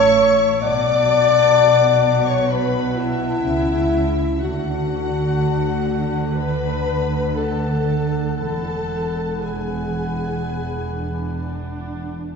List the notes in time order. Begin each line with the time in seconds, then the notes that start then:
Already playing: A1 A2 C#5 E5 A5 C#6
0.61 B1 B2 D5 F#5 A5 D6
2.27 C#5 C#6
2.50 B4 F#5 A5 B5
2.98 E4 E5
3.45 C#2 C#3
4.40 D2 D3 F#4 F#5 A5
6.37 B4 B5
7.36 A4 F#5 A5
8.37 E1 E2 A4 F#5 A5 B5
9.41 G#4 F#5 G#5 B5
10.98 D4